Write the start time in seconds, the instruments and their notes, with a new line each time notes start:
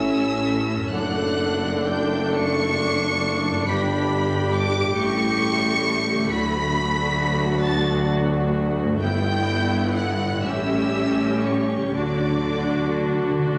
Already playing: tuba A1, double bass section A1, harp A2 C#4 E4 A4, cello section A2, french horn section C#4 E4, viola section C#4 A4, violin section E5 E6
0.74 harp F#2
0.79 harp D4
0.83 harp A4
0.91 tuba F#1, double bass section F#1, cello section F#2, french horn section A3 D4, viola section D4, violin section F#5 F#6
1.87 violin section G5 G6
2.34 violin section C#6 C#7
3.49 harp G2
3.54 harp D4
3.58 harp G4
3.62 tuba G1, french horn section G3, viola section G4, harp B4, violin section B6
3.67 double bass section G1, cello section G2, violin section B5
4.52 violin section D6 D7
4.79 harp A2
4.84 harp A3
4.88 harp G4
4.93 tuba A1, cello section A2, viola section A3, french horn section E4, harp A4, violin section C#7
4.97 double bass section A1, violin section C#6
6.14 harp D3
6.18 harp A3
6.23 harp F#4
6.28 tuba D2, double bass section D2, french horn section F#3 D4, harp A4, violin section B5 B6
6.32 cello section D2, viola section F#4
7.61 violin section A5 A6
8.83 harp G2
8.88 harp G3
8.92 harp E4
8.97 tuba G1, harp B4, violin section G5 G6
9.01 double bass section G1, cello section G2, french horn section G3 E4, viola section B3 E4
9.95 violin section F#5 F#6
10.26 harp A2
10.30 harp G3
10.35 harp C#4
10.40 tuba A1, double bass section A1, cello section A2, french horn section C#4, harp A4, violin section E5 E6
10.44 viola section C#4 G4
11.43 violin section C#5 C#6
11.77 harp D3
11.81 harp F#3
11.86 harp D4
11.90 tuba D2, double bass section D2, cello section D3, timpani D3, harp A4, violin section D5
11.94 french horn section F#3 D4, viola section D4 F#4, violin section D6
12.03 timpani D3
12.21 timpani D3
12.29 timpani D3
12.47 timpani D3
12.55 timpani D3
12.64 timpani D3
12.73 timpani D3
12.81 timpani D3
12.96 timpani D3
13.05 timpani D3
13.21 timpani D3
13.30 timpani D3
13.38 timpani D3
13.47 timpani D3, french horn section A3
13.55 timpani D3